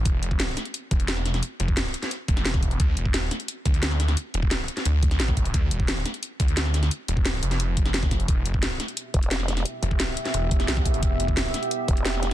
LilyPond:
<<
  \new Staff \with { instrumentName = "Ambient pad" } { \time 4/4 \key e \phrygian \tempo 4 = 175 r1 | r1 | r1 | r1 |
r1 | r1 | <b g' e''>1~ | <b g' e''>1~ |
<b g' e''>1 | }
  \new Staff \with { instrumentName = "Detuned saw bass" } { \clef bass \time 4/4 \key e \phrygian e,,8 f,,4 r4 e,,4. | r8 f,,4 r4 e,,4. | d,8 e,,4 r4 d,4. | r8 e,,4 r8 d,4 a,,4 |
d,8 e,,4 r4 d,4. | r8 e,,4 f,,2~ f,,8 | e,,8 f,,4 r2 r8 | r8 f,,4 r8 e,,4 b,,4 |
e,,8 f,,4 r2 r8 | }
  \new Staff \with { instrumentName = "Wobble bass" } { \clef bass \time 4/4 \key e \phrygian r1 | r1 | r1 | r1 |
r1 | r1 | r2 r8 e,,4. | r1 |
r2 r8 e,,4. | }
  \new DrumStaff \with { instrumentName = "Drums" } \drummode { \time 4/4 <hh bd>8 hh16 bd16 <hh sn>8 <hh sn>16 hh16 hh8 <hh bd>16 hh16 <hh sn>16 sn16 <hh sn>16 <hh sn>16 | hh8 hh16 bd16 <hh sn>8 hh16 <hh sn>16 hh8 <hh bd>16 <hh sn>16 <hh sn>16 <bd sn>16 <hh bd>16 hh16 | <hh bd>8 hh16 bd16 <hh sn>8 <hh sn>16 hh16 hh8 <hh bd>16 hh16 <hh sn>16 sn16 <hh sn>16 <hh sn>16 | hh8 hh16 bd16 <hh sn>8 hh16 <hh sn>16 hh8 <hh bd>16 <hh sn>16 <hh sn>16 <bd sn>16 <hh bd>16 hh16 |
<hh bd>8 hh16 bd16 <hh sn>8 <hh sn>16 hh16 hh8 <hh bd>16 hh16 <hh sn>16 sn16 <hh sn>16 <hh sn>16 | hh8 hh16 bd16 <hh sn>8 hh16 <hh sn>16 hh8 <hh bd>16 <hh sn>16 <hh sn>16 <bd sn>16 <hh bd sn>16 hh16 | <hh bd>8 hh16 bd16 <hh sn>8 <hh sn>16 hh16 hh8 <hh bd>16 hh16 <hh sn>16 sn16 <hh sn>16 <hh sn>16 | hh8 hh16 bd16 <hh sn>8 hh16 <hh sn>16 hh8 <hh bd>16 <hh sn>16 <hh sn>16 <bd sn>16 <hh bd>16 hh16 |
<hh bd>8 hh16 bd16 <hh sn>8 <hh sn>16 hh16 hh8 <hh bd>16 hh16 <hh sn>16 sn16 <hh sn>8 | }
>>